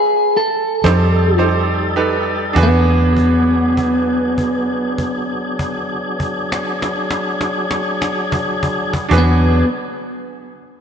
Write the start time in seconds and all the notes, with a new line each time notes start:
Already playing: G#4
0.37 A4
0.84 F2 G3 D#4 G4 A4 C5, cajon bass, cajon slap
1.38 D#4 G4 A4 C5, cajon slap
1.96 D#4 G4 A4 B4, cajon slap
2.53 E2 F#3 D4 F#4 G#4, cajon bass
2.57 D4 G#4 B4
2.63 B3
3.17 cajon bass
3.77 cajon bass
4.38 cajon bass
4.98 cajon bass
5.59 cajon bass
6.20 cajon bass
6.52 cajon slap
6.82 cajon slap
7.11 cajon slap
7.41 cajon slap
7.71 cajon slap
8.02 cajon slap
8.32 cajon bass
8.63 cajon bass
8.93 cajon bass
9.09 E2 F#3 D4 F#4 G#4 B4, cajon bass
9.14 cajon slap
9.18 B3